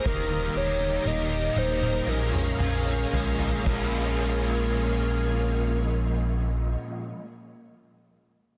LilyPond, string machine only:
\new Staff \with { instrumentName = "String machine" } { \time 4/4 \key bes \dorian \tempo 4 = 54 << { bes''2.~ bes''8 <bes f' aes' des''>8~ | <bes f' aes' des''>1 | } \\ { <g' bes' ees''>2 <aes' des'' f''>4. r8 | r1 | } >> }